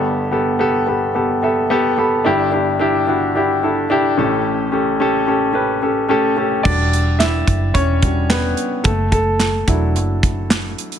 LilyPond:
<<
  \new Staff \with { instrumentName = "Grand piano" } { \time 4/4 \key e \dorian \tempo 4 = 109 << { r2 r8 e''8 fis''8 b''8 | r1 | r2. <a a'>4 | d''4 <e' e''>4 <cis' cis''>4 <b b'>4 |
<a a'>8 <a a'>2. r8 | } \\ { <b g' a'>8 <b g' a'>8 <b g' a'>8 <b g' a'>8 <b g' a'>8 <b g' a'>8 <b g' a'>8 <b g' a'>8 | <d' e' g'>8 <d' e' g'>8 <d' e' g'>8 <d' e' fis'>8 <d' e' g'>8 <d' e' a'>8 <d' e' g'>8 <cis' g' a'>8~ | <cis' g' a'>8 <cis' g' a'>8 <cis' g' a'>8 <cis' g' a'>8 <cis' g' b'>8 <cis' g' a'>8 <cis' g' a'>8 <cis' g' a'>8 | r1 |
r1 | } >> }
  \new Staff \with { instrumentName = "Grand piano" } { \clef bass \time 4/4 \key e \dorian <g,, g,>2.~ <g,, g,>8 r8 | <g,, g,>2.~ <g,, g,>8 <a,, a,>8~ | <a,, a,>2.~ <a,, a,>8 r8 | <g d' fis'>2~ <g d' fis'>8 <g d' fis'>8 r4 |
r4. <fis d' e'>2~ <fis d' e'>8 | }
  \new Staff \with { instrumentName = "Fingered electric bass" } { \clef bass \time 4/4 \key e \dorian r1 | r1 | r1 | e,,4. fis,,8 e,,4. r8 |
fis,,4. e,,8 fis,,4. r8 | }
  \new DrumStaff \with { instrumentName = "Drums" } \drummode { \time 4/4 r4 r4 r4 r4 | r4 r4 r4 r4 | r4 r4 r4 r4 | <cymc bd>8 hh8 <hc hh sn>8 <hh bd>8 <hh bd>8 <hh bd>8 <hc hh sn>8 hh8 |
<hh bd>8 <hh bd>8 <hc hh sn>8 <hh bd>8 hh8 <hh bd>8 <hc hh sn>8 hh16 hh16 | }
>>